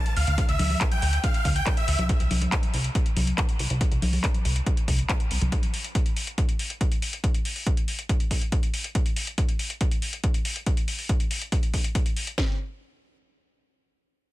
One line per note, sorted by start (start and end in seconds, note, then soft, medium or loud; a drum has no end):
0.00 0.12 A5 medium
0.00 impact medium
0.06 closed hi-hat medium
0.17 0.25 D2 loud
0.17 0.42 F5 loud
0.17 open hi-hat loud
0.27 0.44 D2 loud
0.27 closed hi-hat medium
0.38 kick loud
0.38 closed hi-hat medium
0.49 0.57 D2 loud
0.49 0.83 E5 loud
0.49 closed hi-hat medium
0.59 0.76 D2 medium
0.59 open hi-hat loud
0.59 high conga medium
0.70 open hi-hat medium
0.70 high conga medium
0.81 kick loud
0.81 clap loud
0.81 closed hi-hat medium
0.91 1.17 G5 medium
0.91 closed hi-hat medium
1.02 1.19 D2 loud
1.02 open hi-hat loud
1.13 closed hi-hat medium
1.24 1.50 F5 loud
1.24 kick loud
1.24 closed hi-hat medium
1.34 closed hi-hat medium
1.45 1.61 D2 loud
1.45 kick medium
1.45 open hi-hat loud
1.56 1.73 G5 medium
1.56 closed hi-hat medium
1.66 kick loud
1.66 clap loud
1.66 closed hi-hat medium
1.77 2.03 E5 medium
1.77 closed hi-hat medium
1.88 1.96 D2 loud
1.88 open hi-hat loud
1.99 2.15 C2 loud
1.99 closed hi-hat medium
1.99 high conga medium
2.09 kick loud
2.09 closed hi-hat medium
2.20 2.28 C2 loud
2.20 closed hi-hat soft
2.31 2.47 C2 medium
2.31 open hi-hat loud
2.31 high conga medium
2.42 closed hi-hat medium
2.42 high conga medium
2.52 kick loud
2.52 clap loud
2.52 closed hi-hat medium
2.63 closed hi-hat soft
2.74 2.90 C2 loud
2.74 open hi-hat loud
2.84 closed hi-hat soft
2.95 kick loud
2.95 closed hi-hat medium
3.06 closed hi-hat soft
3.17 3.33 C2 loud
3.17 open hi-hat loud
3.17 high conga medium
3.27 closed hi-hat medium
3.38 kick loud
3.38 clap loud
3.38 closed hi-hat medium
3.49 closed hi-hat soft
3.59 3.68 C2 loud
3.59 open hi-hat loud
3.70 3.86 C2 loud
3.70 closed hi-hat soft
3.81 kick loud
3.81 closed hi-hat medium
3.91 4.00 C2 loud
3.91 closed hi-hat soft
4.02 4.19 C2 medium
4.02 open hi-hat loud
4.02 high conga medium
4.13 open hi-hat medium
4.13 high conga medium
4.24 kick loud
4.24 clap loud
4.24 closed hi-hat medium
4.34 closed hi-hat soft
4.45 4.61 C2 loud
4.45 open hi-hat loud
4.56 closed hi-hat soft
4.66 kick loud
4.66 closed hi-hat medium
4.77 closed hi-hat soft
4.88 5.04 C2 loud
4.88 kick medium
4.88 open hi-hat loud
4.99 closed hi-hat soft
5.09 kick loud
5.09 clap loud
5.09 closed hi-hat medium
5.20 closed hi-hat soft
5.31 5.39 C2 loud
5.31 open hi-hat loud
5.42 5.50 C2 loud
5.42 closed hi-hat soft
5.42 high conga medium
5.52 kick loud
5.52 closed hi-hat medium
5.63 closed hi-hat soft
5.74 open hi-hat loud
5.84 closed hi-hat soft
5.95 kick loud
5.95 closed hi-hat medium
6.06 closed hi-hat soft
6.17 open hi-hat loud
6.27 closed hi-hat soft
6.38 kick loud
6.38 closed hi-hat medium
6.49 closed hi-hat soft
6.59 open hi-hat loud
6.70 closed hi-hat soft
6.81 kick loud
6.81 closed hi-hat medium
6.92 closed hi-hat soft
7.02 open hi-hat loud
7.13 closed hi-hat soft
7.24 kick loud
7.24 closed hi-hat medium
7.34 closed hi-hat soft
7.45 open hi-hat loud
7.56 open hi-hat medium
7.67 kick loud
7.67 closed hi-hat medium
7.77 closed hi-hat soft
7.88 open hi-hat medium
7.99 closed hi-hat soft
8.09 kick loud
8.09 closed hi-hat medium
8.20 closed hi-hat soft
8.31 kick medium
8.31 open hi-hat loud
8.42 closed hi-hat soft
8.52 kick loud
8.52 closed hi-hat medium
8.63 closed hi-hat soft
8.74 open hi-hat loud
8.84 closed hi-hat soft
8.95 kick loud
8.95 closed hi-hat medium
9.06 closed hi-hat medium
9.16 open hi-hat medium
9.27 closed hi-hat medium
9.38 kick loud
9.38 closed hi-hat medium
9.49 closed hi-hat soft
9.59 open hi-hat medium
9.70 closed hi-hat soft
9.81 kick loud
9.81 closed hi-hat medium
9.91 closed hi-hat medium
10.02 open hi-hat medium
10.13 closed hi-hat soft
10.24 kick loud
10.24 closed hi-hat medium
10.34 closed hi-hat medium
10.45 open hi-hat loud
10.56 closed hi-hat soft
10.66 kick loud
10.66 closed hi-hat medium
10.77 closed hi-hat medium
10.88 open hi-hat loud
10.99 open hi-hat medium
11.09 kick loud
11.09 closed hi-hat medium
11.20 closed hi-hat soft
11.31 open hi-hat medium
11.42 closed hi-hat medium
11.52 kick loud
11.52 closed hi-hat medium
11.63 closed hi-hat medium
11.74 kick medium
11.74 open hi-hat medium
11.84 closed hi-hat medium
11.95 kick loud
11.95 closed hi-hat medium
12.06 closed hi-hat medium
12.17 open hi-hat medium
12.27 closed hi-hat soft
12.38 kick medium
12.38 snare medium